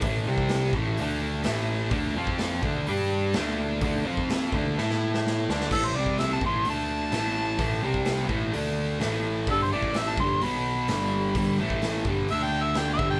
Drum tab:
CC |----------------|----------------|----------------|x---------------|
HH |o---o---o---o---|o---o---o---o---|o---o-----------|----o---o---o---|
SD |----o-------o---|----o-------o---|----o---oo-oo-oo|----o-------o---|
BD |o--o--o---------|o--o--o---------|o--o--o---------|o--o--o---------|

CC |----------------|----------------|----------------|
HH |o---o---o---o---|o---o---o---o---|o---o---o---o---|
SD |----o-------o---|----o-------o---|----o-------o---|
BD |o--o--o---------|o--o--o---------|o--o--o-------o-|